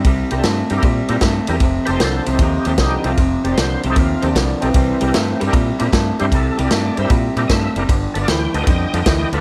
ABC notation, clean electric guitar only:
X:1
M:4/4
L:1/8
Q:"Swing" 1/4=153
K:Cmix
V:1 name="Clean electric guitar" clef=bass
[C,G,] [C,G,] [C,A,] [C,G,] [C,G,] [C,G,] [C,A,] [C,G,] | [F,,C,] [F,,C,] [F,,D,] [F,,C,] [F,,C,] [F,,C,] [F,,D,] [F,,C,] | [F,,C,] [F,,C,] [F,,D,] [F,,C,] [F,,C,] [F,,C,] [F,,D,] [F,,C,] | [C,G,] [C,G,] [C,A,] [C,G,] [C,G,] [C,G,] [C,A,] [C,G,] |
[C,G,] [C,G,] [C,A,] [C,G,] [C,G,] [C,G,] [C,A,] [C,G,] | [G,,D,] [G,,D,] [G,,E,] [G,,D,] [G,,D,] [G,,D,] [G,,E,] [G,,D,] |]